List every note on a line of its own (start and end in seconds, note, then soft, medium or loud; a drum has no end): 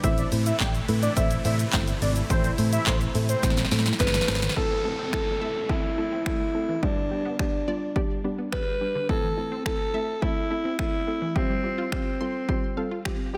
0.03 0.22 A1 loud
0.03 4.53 C3 medium
0.03 4.53 E3 medium
0.03 0.23 A3 loud
0.03 4.52 A3 medium
0.03 0.23 C4 medium
0.03 4.52 E4 medium
0.03 0.23 E4 loud
0.03 0.23 A4 medium
0.03 0.23 C5 loud
0.03 0.23 E5 loud
0.03 kick loud
0.03 closed hi-hat medium
0.03 shaker medium
0.18 closed hi-hat medium
0.18 shaker medium
0.32 0.50 A2 loud
0.32 0.52 A3 medium
0.32 0.52 C4 medium
0.32 0.52 E4 medium
0.32 0.52 A4 medium
0.32 0.52 C5 medium
0.32 open hi-hat medium
0.32 shaker medium
0.46 0.56 E5 medium
0.46 closed hi-hat medium
0.46 shaker medium
0.60 0.79 A1 loud
0.60 0.80 A3 medium
0.60 0.80 C4 medium
0.60 0.80 E4 medium
0.60 0.80 A4 medium
0.60 0.80 D5 medium
0.60 0.70 G5 medium
0.60 kick loud
0.60 snare medium
0.60 clap loud
0.60 closed hi-hat medium
0.60 shaker medium
0.75 closed hi-hat medium
0.75 shaker medium
0.88 1.07 A2 loud
0.88 1.08 A3 medium
0.88 1.08 C4 medium
0.88 1.08 E4 medium
0.88 1.08 A4 medium
0.88 1.08 B4 medium
0.88 open hi-hat medium
0.88 shaker medium
1.03 1.13 D5 medium
1.03 closed hi-hat medium
1.03 shaker medium
1.17 1.35 A1 loud
1.17 1.36 A3 loud
1.17 1.37 C4 loud
1.17 1.37 E4 loud
1.17 1.37 A4 loud
1.17 1.37 C5 loud
1.17 1.37 E5 medium
1.17 kick loud
1.17 closed hi-hat medium
1.17 shaker medium
1.31 closed hi-hat medium
1.31 shaker medium
1.45 1.64 A2 loud
1.45 1.65 A3 medium
1.45 1.65 C4 medium
1.45 1.65 E4 medium
1.45 1.65 A4 medium
1.45 1.65 C5 medium
1.45 1.55 E5 medium
1.45 open hi-hat medium
1.45 shaker medium
1.59 closed hi-hat medium
1.59 shaker medium
1.73 1.92 G1 loud
1.73 1.93 A3 medium
1.73 1.93 C4 medium
1.73 1.93 E4 medium
1.73 1.93 A4 medium
1.73 1.93 C5 loud
1.73 kick loud
1.73 snare loud
1.73 clap loud
1.73 clap medium
1.73 closed hi-hat medium
1.73 shaker medium
1.88 closed hi-hat medium
1.88 shaker medium
2.02 2.20 G#1 loud
2.02 2.21 A3 medium
2.02 2.21 C4 medium
2.02 2.22 E4 medium
2.02 2.22 A4 medium
2.02 2.12 D5 medium
2.02 2.22 D5 medium
2.02 open hi-hat medium
2.02 shaker medium
2.16 closed hi-hat soft
2.16 shaker medium
2.30 2.49 A1 loud
2.30 2.50 A3 loud
2.30 2.50 C4 medium
2.30 2.50 E4 loud
2.30 2.50 A4 loud
2.30 2.50 C5 loud
2.30 kick loud
2.30 closed hi-hat medium
2.30 shaker medium
2.44 closed hi-hat medium
2.44 shaker medium
2.58 2.77 A2 loud
2.58 2.78 A3 medium
2.58 2.78 C4 medium
2.58 2.78 E4 medium
2.58 2.78 A4 medium
2.58 2.78 C5 medium
2.58 open hi-hat medium
2.58 shaker medium
2.73 2.83 E5 medium
2.73 closed hi-hat medium
2.73 shaker medium
2.86 3.05 A1 loud
2.86 3.06 A3 medium
2.86 3.06 C4 medium
2.86 3.06 E4 medium
2.86 3.06 A4 medium
2.86 2.97 C5 medium
2.86 3.07 C5 medium
2.86 kick loud
2.86 snare medium
2.86 clap loud
2.86 clap medium
2.86 closed hi-hat medium
2.86 shaker medium
3.01 closed hi-hat medium
3.01 shaker medium
3.15 3.33 A2 loud
3.15 3.35 A3 medium
3.15 3.35 C4 medium
3.15 3.35 E4 medium
3.15 3.35 A4 medium
3.15 3.35 C5 medium
3.15 open hi-hat medium
3.15 shaker medium
3.29 3.69 C5 medium
3.29 closed hi-hat medium
3.29 shaker medium
3.43 3.62 A1 loud
3.43 3.63 A3 loud
3.43 3.63 C4 loud
3.43 3.63 E4 medium
3.43 3.63 A4 medium
3.43 3.63 C5 loud
3.43 kick loud
3.43 snare medium
3.43 closed hi-hat medium
3.43 shaker medium
3.50 snare medium
3.57 snare medium
3.57 closed hi-hat medium
3.57 shaker medium
3.65 snare medium
3.71 3.90 A2 loud
3.71 3.91 A3 medium
3.71 3.91 C4 medium
3.71 3.91 E4 medium
3.71 3.91 A4 medium
3.71 3.91 C5 medium
3.71 snare medium
3.71 open hi-hat medium
3.71 shaker medium
3.79 snare medium
3.86 snare medium
3.86 closed hi-hat soft
3.86 shaker medium
3.93 snare medium
4.00 4.18 G1 medium
4.00 4.20 A3 medium
4.00 4.20 C4 medium
4.00 4.20 E4 medium
4.00 4.20 A4 medium
4.00 4.53 B4 loud
4.00 4.20 C5 loud
4.00 kick loud
4.00 snare medium
4.00 clap medium
4.00 closed hi-hat medium
4.00 shaker medium
4.07 snare medium
4.14 snare loud
4.14 closed hi-hat medium
4.14 shaker medium
4.21 snare medium
4.28 4.47 G#1 medium
4.28 4.48 A3 loud
4.28 4.48 C4 medium
4.28 4.48 E4 medium
4.28 4.48 A4 medium
4.28 4.48 C5 loud
4.28 snare loud
4.28 open hi-hat medium
4.28 shaker medium
4.35 snare loud
4.42 snare loud
4.42 closed hi-hat soft
4.42 shaker medium
4.49 snare loud
4.56 4.69 A2 medium
4.56 4.76 A3 medium
4.56 4.76 C4 medium
4.56 4.76 E4 medium
4.56 4.76 A4 loud
4.56 5.09 A4 loud
4.56 kick loud
4.56 downlifter medium
4.71 4.83 E3 medium
4.84 5.04 A3 medium
4.84 5.04 C4 medium
4.84 5.05 E4 medium
4.84 5.05 A4 medium
4.99 5.12 C4 medium
5.13 5.33 A3 medium
5.13 5.33 C4 medium
5.13 5.33 E4 medium
5.13 5.26 E4 medium
5.13 5.33 A4 medium
5.13 5.71 A4 loud
5.13 finger snap loud
5.13 kick loud
5.41 5.61 A3 medium
5.41 5.61 C4 medium
5.41 5.61 E4 medium
5.41 5.61 A4 medium
5.41 5.54 E5 loud
5.69 5.89 A3 loud
5.69 5.89 C4 medium
5.69 5.89 E4 medium
5.69 6.26 E4 medium
5.69 5.89 A4 loud
5.69 5.82 E5 medium
5.69 kick loud
5.98 6.17 A3 medium
5.98 6.18 C4 medium
5.98 6.18 E4 medium
5.98 6.11 E4 medium
5.98 6.18 A4 medium
6.12 6.25 C4 medium
6.26 6.46 A3 medium
6.26 6.39 A3 medium
6.26 6.46 C4 medium
6.26 6.46 E4 medium
6.26 6.84 E4 medium
6.26 6.46 A4 medium
6.26 finger snap loud
6.26 kick loud
6.54 6.74 A3 medium
6.54 6.74 C4 medium
6.54 6.74 E4 medium
6.54 6.74 A4 medium
6.69 6.81 E3 medium
6.82 6.96 G2 medium
6.82 7.02 G3 medium
6.82 7.03 B3 medium
6.82 7.03 D4 medium
6.82 7.39 D4 medium
6.82 7.03 G4 loud
6.82 kick loud
6.97 7.10 D3 medium
7.11 7.31 G3 medium
7.11 7.31 B3 medium
7.11 7.31 D4 medium
7.11 7.31 G4 medium
7.25 7.38 B3 medium
7.39 7.59 G3 medium
7.39 7.59 B3 medium
7.39 7.59 D4 medium
7.39 7.52 D4 medium
7.39 8.22 D4 medium
7.39 7.59 G4 medium
7.39 finger snap loud
7.39 kick loud
7.67 7.87 G3 medium
7.67 7.87 B3 medium
7.67 7.87 D4 medium
7.67 7.88 F4 medium
7.67 7.80 D5 loud
7.96 8.16 G3 loud
7.96 8.16 B3 medium
7.96 8.16 D4 medium
7.96 8.16 G4 loud
7.96 8.09 D5 medium
7.96 kick loud
8.24 8.44 G3 medium
8.24 8.44 B3 medium
8.24 8.37 D4 medium
8.24 8.44 D4 medium
8.24 8.44 G4 medium
8.38 8.51 B3 medium
8.52 8.72 G3 medium
8.52 8.65 G3 medium
8.52 8.72 B3 medium
8.52 8.72 D4 medium
8.52 8.72 G4 medium
8.52 9.05 B4 loud
8.52 finger snap loud
8.52 kick loud
8.81 9.01 G3 medium
8.81 9.01 B3 medium
8.81 9.01 D4 medium
8.81 9.01 G4 medium
8.95 9.08 D3 medium
9.09 9.22 A2 medium
9.09 9.29 A3 loud
9.09 9.29 C4 medium
9.09 9.29 E4 medium
9.09 9.62 A4 loud
9.09 9.29 A4 loud
9.09 kick loud
9.24 9.36 E3 medium
9.37 9.57 A3 medium
9.37 9.57 C4 medium
9.37 9.57 E4 medium
9.37 9.57 A4 medium
9.52 9.64 C4 medium
9.65 9.85 A3 medium
9.65 9.85 C4 medium
9.65 9.86 E4 medium
9.65 9.79 E4 medium
9.65 10.24 A4 loud
9.65 9.86 A4 medium
9.65 finger snap loud
9.65 kick loud
9.94 10.14 A3 medium
9.94 10.14 C4 medium
9.94 10.14 E4 medium
9.94 10.14 A4 medium
9.94 10.07 E5 loud
10.22 10.42 A3 loud
10.22 10.42 C4 medium
10.22 10.42 E4 medium
10.22 10.79 E4 loud
10.22 10.42 A4 loud
10.22 10.35 E5 medium
10.22 kick loud
10.50 10.70 A3 medium
10.50 10.70 C4 medium
10.50 10.70 E4 medium
10.50 10.63 E4 medium
10.50 10.71 A4 medium
10.65 10.78 C4 medium
10.79 10.99 A3 medium
10.79 10.92 A3 medium
10.79 10.99 C4 medium
10.79 10.99 E4 medium
10.79 11.37 E4 medium
10.79 10.99 A4 medium
10.79 finger snap loud
10.79 kick loud
11.07 11.27 A3 medium
11.07 11.27 C4 medium
11.07 11.27 E4 medium
11.07 11.27 A4 medium
11.22 11.34 E3 medium
11.35 11.48 F3 medium
11.35 11.55 G3 loud
11.35 11.55 C4 medium
11.35 11.92 C4 medium
11.35 11.55 F4 medium
11.35 11.55 G4 loud
11.35 kick loud
11.50 11.62 G3 medium
11.63 11.83 G3 medium
11.63 11.84 C4 medium
11.63 11.84 F4 medium
11.63 11.84 G4 medium
11.78 11.91 F4 medium
11.92 12.12 G3 medium
11.92 12.12 C4 medium
11.92 13.02 C4 medium
11.92 12.12 F4 medium
11.92 12.12 G4 medium
11.92 12.05 F5 medium
11.92 finger snap loud
11.92 kick loud
12.20 12.40 G3 medium
12.20 12.40 C4 medium
12.20 12.40 F4 medium
12.20 12.40 A4 medium
12.20 12.33 C6 loud
12.49 12.68 G3 loud
12.49 12.69 C4 medium
12.49 12.69 F4 medium
12.49 12.69 G4 loud
12.49 12.62 C6 medium
12.49 kick loud
12.77 12.97 G3 medium
12.77 12.97 C4 medium
12.77 12.97 F4 medium
12.77 12.97 A4 loud
12.77 12.90 F5 medium
12.91 13.04 F4 medium
13.05 13.25 G3 medium
13.05 13.25 C4 medium
13.05 13.18 C4 medium
13.05 13.25 F4 medium
13.05 13.25 G4 loud
13.05 finger snap loud
13.05 kick loud
13.33 13.38 G3 medium
13.33 13.38 C4 medium
13.33 13.38 F4 medium
13.33 13.38 G4 medium